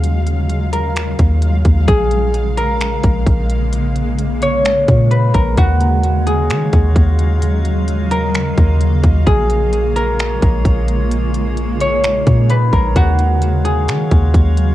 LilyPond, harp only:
\new Staff \with { instrumentName = "Harp" } { \time 4/4 \key ees \minor \tempo 4 = 130 r4. bes'2~ bes'8 | aes'4. bes'2~ bes'8 | r4. des''4. ces''8 bes'8 | ges'4. aes'2~ aes'8 |
r4. bes'2~ bes'8 | aes'4. bes'2~ bes'8 | r4. des''4. ces''8 bes'8 | ges'4. aes'2~ aes'8 | }